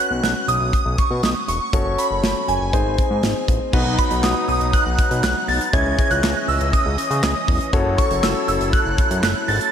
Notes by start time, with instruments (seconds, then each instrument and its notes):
Already playing: grand piano C#4 F#4 B4 C#5
0.00 synth bell F#6
0.11 analog synth bass B1
0.23 analog synth bass B1, snare, closed hi-hat
0.48 analog synth bass B1, synth bell D#6, closed hi-hat
0.61 analog synth bass B1
0.73 kick, closed hi-hat
0.86 analog synth bass B1
0.98 synth bell C#6, kick, closed hi-hat
1.11 analog synth bass B2
1.23 analog synth bass B1, synth bell D#6, snare, closed hi-hat
1.48 analog synth bass E1, synth bell C#6, closed hi-hat
1.73 analog synth bass F#1, grand piano C#4 F#4 A4 C#5, kick, closed hi-hat
1.86 analog synth bass F#1
1.98 synth bell B5, closed hi-hat
2.11 analog synth bass F#1
2.23 analog synth bass F#1, snare, closed hi-hat
2.48 analog synth bass F#1, synth bell G#5, closed hi-hat
2.61 analog synth bass F#1
2.73 analog synth bass G#1, grand piano C4 D#4 G#4 C5, kick, closed hi-hat
2.86 analog synth bass G#1
2.98 kick, closed hi-hat
3.11 analog synth bass G#2
3.23 analog synth bass G#1, snare, closed hi-hat
3.48 analog synth bass A1, kick, closed hi-hat
3.73 analog synth bass B1, accordion F#3 B3 D#4, grand piano B3 D#4 F#4 B4, kick, crash
3.86 analog synth bass B1
3.98 synth bell B5, kick, closed hi-hat
4.11 analog synth bass B1, closed hi-hat
4.23 analog synth bass B1, synth bell D#6, snare, clap, closed hi-hat
4.48 analog synth bass B1, synth bell D#6, open hi-hat
4.61 analog synth bass B1, closed hi-hat
4.73 synth bell F#6, kick, closed hi-hat
4.86 analog synth bass B1
4.98 kick, closed hi-hat
5.11 analog synth bass B2, closed hi-hat
5.23 analog synth bass B1, synth bell F#6, snare, clap, closed hi-hat
5.48 analog synth bass B1, synth bell A6, open hi-hat
5.61 closed hi-hat
5.73 analog synth bass C#2, accordion E3 C#4 D#5, grand piano C#4 E4 G#4 C#5, synth bell G#6, kick, closed hi-hat
5.86 analog synth bass C#2
5.99 kick, closed hi-hat
6.11 analog synth bass C#2, synth bell F#6, closed hi-hat
6.23 analog synth bass C#2, snare, clap, closed hi-hat
6.48 analog synth bass C#2, synth bell E6, open hi-hat
6.61 analog synth bass C#2, closed hi-hat
6.73 synth bell D#6, kick, closed hi-hat
6.86 analog synth bass C#2
6.98 closed hi-hat
7.11 analog synth bass C#3, closed hi-hat
7.23 analog synth bass C#2, synth bell D#6, snare, clap, closed hi-hat
7.48 analog synth bass E1, kick, open hi-hat
7.61 closed hi-hat
7.73 analog synth bass F#1, accordion F#3 E4 A4, grand piano C#4 F#4 A4 C#5, kick, closed hi-hat
7.86 analog synth bass F#1
7.98 synth bell C#6, kick, closed hi-hat
8.11 analog synth bass F#1, closed hi-hat
8.23 analog synth bass F#1, synth bell E6, snare, clap, closed hi-hat
8.48 analog synth bass F#1, synth bell E6, closed hi-hat
8.61 analog synth bass F#1, closed hi-hat
8.73 synth bell F#6, kick, closed hi-hat
8.86 analog synth bass F#1
8.98 kick, closed hi-hat
9.11 analog synth bass F#2, closed hi-hat
9.23 analog synth bass F#1, synth bell F#6, snare, clap, closed hi-hat
9.48 analog synth bass G#1, synth bell A6, open hi-hat
9.61 closed hi-hat